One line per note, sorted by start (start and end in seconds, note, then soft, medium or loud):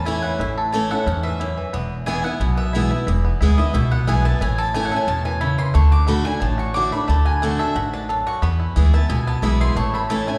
0.00 0.21 E2 medium
0.00 0.37 E2 medium
0.00 0.24 E3 medium
0.00 0.20 C#4 medium
0.05 0.38 E3 medium
0.05 0.38 A3 medium
0.05 0.39 C#4 medium
0.05 0.39 E4 medium
0.05 0.39 E4 loud
0.05 0.22 G#5 medium
0.22 1.24 E3 medium
0.22 0.38 F#5 loud
0.39 0.88 A1 medium
0.39 1.04 A2 medium
0.39 1.39 E4 medium
0.39 0.49 E5 medium
0.58 0.90 A4 medium
0.72 0.90 E3 medium
0.72 1.21 A3 medium
0.72 0.90 A3 medium
0.72 0.91 C#4 loud
0.72 0.90 E4 medium
0.72 0.90 A5 medium
0.91 1.07 C#4 soft
0.91 1.06 E4 medium
0.91 1.37 A4 medium
0.91 1.22 F#5 medium
1.06 1.55 E2 medium
1.06 1.39 G#2 medium
1.06 1.54 C#4 medium
1.23 1.57 E3 medium
1.23 1.69 E5 loud
1.40 1.72 F#2 medium
1.40 2.07 E4 medium
1.57 2.97 E3 medium
1.73 2.22 E1 medium
1.73 2.37 E2 loud
1.73 2.57 B3 medium
2.06 2.24 E3 medium
2.06 2.24 G#3 loud
2.06 2.24 B3 loud
2.06 2.24 E4 medium
2.06 2.24 E4 loud
2.06 2.23 G#5 loud
2.24 2.40 B3 medium
2.24 2.40 E4 medium
2.24 2.55 F#5 loud
2.40 2.88 B1 medium
2.40 3.04 B2 medium
2.40 2.73 E4 medium
2.57 3.04 B3 medium
2.57 3.03 E5 loud
2.73 2.91 E3 medium
2.73 2.91 G#3 loud
2.73 2.91 B3 loud
2.73 2.90 E4 medium
2.73 2.91 E4 loud
2.91 3.08 B3 soft
2.91 3.07 E4 medium
3.07 3.31 E1 medium
3.07 3.71 E2 loud
3.07 3.41 E4 medium
3.25 3.71 B3 medium
3.41 3.69 D2 medium
3.41 3.58 E3 medium
3.41 3.58 G#3 loud
3.41 3.59 B3 medium
3.41 3.57 E4 medium
3.41 3.58 E4 loud
3.58 3.74 B3 medium
3.58 3.73 E4 medium
3.58 3.74 E4 medium
3.58 3.73 D#5 loud
3.74 4.02 C#2 medium
3.74 4.38 B2 loud
3.74 4.06 E4 medium
3.74 3.91 E5 medium
3.91 4.38 B3 medium
3.91 4.07 F#5 loud
4.07 4.36 B1 medium
4.07 4.24 E3 medium
4.07 4.25 G#3 medium
4.07 4.25 B3 medium
4.07 4.24 E4 medium
4.07 4.24 E4 loud
4.07 4.24 G#5 medium
4.25 4.41 B3 soft
4.25 4.40 E4 medium
4.25 4.40 A5 loud
4.41 4.89 A1 loud
4.41 5.05 A2 loud
4.41 4.88 E4 medium
4.41 4.58 G#5 medium
4.58 4.90 A4 medium
4.58 4.74 A5 loud
4.74 4.91 E3 medium
4.74 5.22 A3 medium
4.74 4.92 A3 medium
4.74 4.92 C#4 loud
4.74 4.90 E4 loud
4.74 4.84 G#5 loud
4.85 4.96 F#5 medium
4.92 5.08 C#4 medium
4.92 5.07 E4 medium
4.92 5.38 A4 medium
4.96 5.07 G#5 loud
5.07 5.56 E2 medium
5.07 5.39 B2 medium
5.07 5.55 C#4 medium
5.07 5.25 A5 loud
5.25 5.57 E3 medium
5.25 5.40 G#5 loud
5.41 5.73 C#3 medium
5.41 5.74 E4 medium
5.41 5.58 B5 medium
5.58 5.74 E3 medium
5.58 5.74 C6 loud
5.74 6.23 D2 medium
5.74 6.06 D3 loud
5.74 6.06 A3 medium
5.74 5.92 C#6 medium
5.91 6.58 F#4 medium
5.91 6.07 D6 loud
6.07 6.25 D3 medium
6.07 6.39 A3 medium
6.07 6.25 A3 loud
6.07 6.25 D4 loud
6.07 6.25 F#4 loud
6.07 6.25 B5 loud
6.25 6.71 D4 medium
6.25 6.41 D4 medium
6.25 6.41 F#4 medium
6.25 6.41 G#5 loud
6.40 6.90 A1 medium
6.40 7.05 A2 medium
6.40 6.88 A3 medium
6.40 6.58 A5 medium
6.58 7.05 F#4 medium
6.58 6.74 C#6 loud
6.74 6.92 D3 medium
6.74 6.92 A3 medium
6.74 7.22 D4 medium
6.74 6.93 D4 medium
6.74 6.92 F#4 medium
6.74 6.92 D6 loud
6.92 7.06 A3 medium
6.92 7.09 D4 soft
6.92 7.08 F#4 medium
6.92 7.08 B5 loud
7.08 7.57 D2 medium
7.08 7.42 D3 medium
7.08 7.41 A3 medium
7.08 7.25 A5 medium
7.25 7.72 F#4 medium
7.25 7.41 G#5 loud
7.42 7.59 D3 medium
7.42 7.89 A3 medium
7.42 7.59 A3 loud
7.42 7.60 D4 loud
7.42 7.59 F#4 medium
7.42 7.59 F#5 loud
7.59 7.76 D4 medium
7.59 7.75 F#4 medium
7.59 8.05 A4 medium
7.59 7.75 E5 loud
7.75 8.24 A1 medium
7.75 8.07 G#2 medium
7.75 8.23 F#4 medium
7.75 7.93 F#5 medium
7.93 8.39 D4 medium
7.93 8.03 A5 loud
8.09 8.41 F#2 medium
8.09 8.42 A4 medium
8.27 8.43 F#4 medium
8.27 8.42 C#6 loud
8.42 8.66 E2 medium
8.42 9.06 E2 medium
8.42 8.90 B3 medium
8.42 8.90 B5 medium
8.60 8.76 E4 medium
8.76 9.04 D2 medium
8.76 8.93 E3 loud
8.76 8.93 G#3 loud
8.76 8.93 B3 loud
8.76 8.93 E4 medium
8.76 8.92 E4 medium
8.93 9.10 B3 soft
8.93 9.09 E4 medium
8.93 9.09 A5 loud
9.09 9.37 C#2 medium
9.09 9.73 B2 medium
9.09 9.43 E4 medium
9.09 9.27 G#5 loud
9.27 9.73 B3 medium
9.27 9.43 A5 loud
9.42 9.71 B1 medium
9.42 9.74 E3 medium
9.42 9.75 G#3 loud
9.42 9.75 B3 medium
9.42 9.61 E4 medium
9.42 9.75 E4 medium
9.42 9.60 B5 loud
9.61 10.09 E4 medium
9.61 9.76 C6 loud
9.76 10.25 A1 medium
9.76 10.38 A2 medium
9.76 10.27 A3 medium
9.76 9.94 C#6 loud
9.94 10.38 A4 medium
9.94 10.10 B5 loud
10.10 10.27 E3 medium
10.10 10.27 A3 loud
10.10 10.27 C#4 medium
10.10 10.38 E4 medium
10.10 10.27 E4 loud
10.10 10.27 A5 loud
10.27 10.38 A3 medium
10.27 10.38 C#4 medium
10.27 10.38 E4 medium
10.27 10.38 G#5 loud